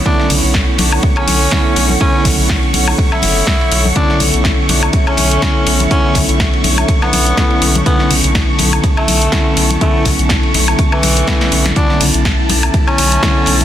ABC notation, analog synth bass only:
X:1
M:4/4
L:1/16
Q:"Swing 16ths" 1/4=123
K:Bm
V:1 name="Analog synth bass" clef=bass
z2 B,,, B,,,2 z B,,,2 z2 B,,,2 z2 B,,,2 | z2 B,,, B,,,2 z B,,,2 z2 F,,,2 z2 B,,,2 | z2 B,,, B,,,2 z B,,,2 z2 B,,,2 z2 B,,,2 | z2 B,,, B,,,2 z B,,,2 z2 B,,,2 z2 B,,,2 |
z2 B,,, B,,,2 z B,,,2 z2 B,,,2 z2 B,,,2 | z2 B,,, B,,,2 z B,,,2 z2 B,,,2 z2 B,,,2 | z2 B,,, B,,,2 z B,,,2 z2 B,,,2 z2 B,,,2 |]